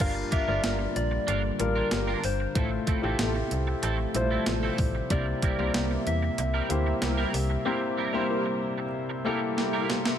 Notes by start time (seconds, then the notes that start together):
0.00 G1 G2 D3 G3 A#3 D4 F4 A#4 F5, kick, closed hi-hat, crash
0.15 muted clean electric guitar stroke
0.31 A#3 D4 F4 A#4 E5, kick, closed hi-hat
0.47 G1 G3 A#3 D4 F4 A#4
0.63 G1 F4 G4 A#4, muted clean electric guitar stroke, snare, closed hi-hat
0.79 muted clean electric guitar stroke
0.96 A#1 D5, closed hi-hat
1.11 muted clean electric guitar stroke
1.27 G1 A#3 D4 F4 A#4, closed hi-hat
1.44 muted clean electric guitar stroke
1.59 A1 G3 D4 F4 A#4, muted clean electric guitar stroke, closed hi-hat
1.76 A#3 D4 F4 A#4
1.91 G1 F4 G4 A#4, muted clean electric guitar stroke, snare, closed hi-hat
2.07 A#3 D4 F4 A#4
2.24 G1 C5, muted clean electric guitar stroke, open hi-hat
2.40 muted clean electric guitar stroke
2.55 A1 A2 C3 F3 A3 C4 E4 F4 A4 C5 E5, kick, closed hi-hat
2.72 muted clean electric guitar stroke
2.87 A3 C4 E4 A4, kick, closed hi-hat
3.02 A1 A3 C4 E4 F4 G4 A4
3.19 A1 A3 F4 A4, snare, closed hi-hat
3.35 muted clean electric guitar stroke
3.51 C2, closed hi-hat
3.67 muted clean electric guitar stroke
3.83 A1 A3 C4 E4 A4, closed hi-hat
3.99 muted clean electric guitar stroke
4.14 A#1 G3 E4 F4 C5, muted clean electric guitar stroke, closed hi-hat
4.21 A3
4.31 A3 C4 E4 A4
4.46 A1 A3 F4 A4, muted clean electric guitar stroke, snare, closed hi-hat
4.63 A3 C4 E4 A4
4.78 A1, muted clean electric guitar stroke, kick, open hi-hat
4.95 muted clean electric guitar stroke
5.10 C2 C3 G3 A#3 C4 E4 G4 A#4 C5 D5, kick, closed hi-hat
5.27 muted clean electric guitar stroke
5.42 G3 C4 E4 A#4, kick, closed hi-hat
5.58 C2 G3 A#3 C4 E4 G4 A#4 C5
5.74 C2 E4 G4 A#4, muted clean electric guitar stroke, snare, closed hi-hat
5.91 muted clean electric guitar stroke
6.07 E2 E5, closed hi-hat
6.22 muted clean electric guitar stroke
6.38 C2, muted clean electric guitar stroke, closed hi-hat
6.54 G3 C4 E4 A#4
6.69 D2 A#3 E4 G4 C5, muted clean electric guitar stroke, closed hi-hat
6.86 muted clean electric guitar stroke
7.02 C2 E4 G4 A#4, muted clean electric guitar stroke, snare, closed hi-hat
7.18 G3 C4 E4 A#4
7.34 C2, muted clean electric guitar stroke, open hi-hat
7.50 muted clean electric guitar stroke
7.65 C3 G3 A#3 C4 E4 G4 A#4 C5
7.81 muted clean electric guitar stroke
7.97 G3 C4 E4 A#4
8.13 G3 A#3 C4 E4 G4 A#4 C5
8.30 E4 G4 A#4
8.46 muted clean electric guitar stroke
8.78 muted clean electric guitar stroke
9.10 muted clean electric guitar stroke
9.25 G3 A#3 C4 E4 G4 A4 A#4
9.42 muted clean electric guitar stroke
9.57 E4 G4 A#4, muted clean electric guitar stroke, snare
9.73 G3 C4 E4 A#4
9.90 snare
10.05 muted clean electric guitar stroke, snare